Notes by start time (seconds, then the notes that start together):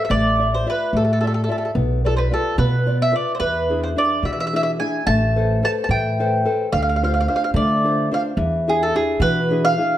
0.05 E5
0.10 A1 A3 D5
0.39 F4 D5 E5
0.54 C5
0.66 F4 B4 D5 E5
0.93 A2 A3 A4
1.05 A4
1.13 A4
1.21 F4 A4 D5 E5
1.27 A4
1.34 A4
1.44 A4
1.49 F4 A4 D5 E5
1.58 A4
1.65 A4
1.75 B1 B3
2.04 F4 A4 B4 D5
2.17 B4 C5
2.31 F4 A4 B4 D5
2.58 B2 B3 B4
2.86 F4 B4 D5
3.02 E5
3.12 F4 B4 D5
3.35 C5
3.40 E2 E3 B4
3.69 D4 E4 G#4
3.83 C5
3.96 D4 E4 G#4 D5
4.23 B2 E3 E5
4.33 E5
4.40 E5
4.47 E5
4.53 D4 E4 G#4 E5
4.63 E5
4.80 D4 E4 G#4 G#5
5.07 A1 A3 A5
5.36 A4 B4 C5
5.63 A4 B4 C5 A5
5.84 A5
5.89 A2 E3 G5
6.20 A4 B4 C5
6.45 A4 B4 C5
6.72 D2 D3 F5
6.82 F5
6.89 F5
6.96 F5
7.02 D4 F4 C5 F5
7.14 F5
7.21 F5
7.28 D4 F4 C5 F5
7.36 F5
7.44 F5
7.54 D3 A3 D5
7.84 D4 F4 C5
8.11 D4 F4 C5 F5
8.37 E2 E3
8.67 D4 E4 G#4
8.83 A4
8.95 D4 E4 G#4
9.20 B2 E3 B4
9.50 D4 E4 G#4
9.65 F5
9.78 D4 E4 G#4